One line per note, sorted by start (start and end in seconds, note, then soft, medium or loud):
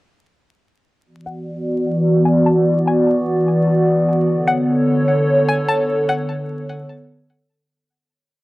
1.06 4.25 E3 medium
1.06 7.46 B3 medium
1.06 4.25 F#4 medium
1.06 4.25 D5 medium
1.26 1.83 F#5 medium
2.25 2.45 G#5 medium
2.46 2.65 A5 medium
2.88 3.44 G#5 medium
4.28 7.47 D3 medium
4.28 7.47 A4 medium
4.28 7.47 C#5 medium
4.47 5.04 F#5 medium
5.48 5.68 G#5 medium
5.69 5.88 A5 medium
6.09 6.66 F#5 medium